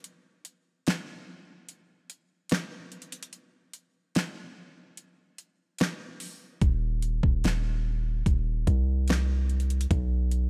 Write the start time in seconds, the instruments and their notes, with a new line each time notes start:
0.04 closed hi-hat
0.45 closed hi-hat
0.87 snare, closed hi-hat
1.69 closed hi-hat
2.10 closed hi-hat
2.49 cross-stick, snare, closed hi-hat
2.92 closed hi-hat
3.02 closed hi-hat
3.12 closed hi-hat
3.23 closed hi-hat
3.33 closed hi-hat
3.73 closed hi-hat
4.15 snare, closed hi-hat
4.97 closed hi-hat
5.38 closed hi-hat
5.78 cross-stick, snare, closed hi-hat
6.20 open hi-hat
6.61 808-style bass D#1, kick, closed hi-hat
7.02 closed hi-hat
7.23 808-style bass D#1, kick
7.44 808-style bass D#1, snare, closed hi-hat
8.26 808-style bass D#1, kick, closed hi-hat
8.67 808-style bass C2, kick, closed hi-hat
9.08 cross-stick, snare, closed hi-hat
9.49 closed hi-hat
9.60 closed hi-hat
9.70 closed hi-hat
9.81 closed hi-hat
9.91 808-style bass B1, kick, closed hi-hat
10.31 closed hi-hat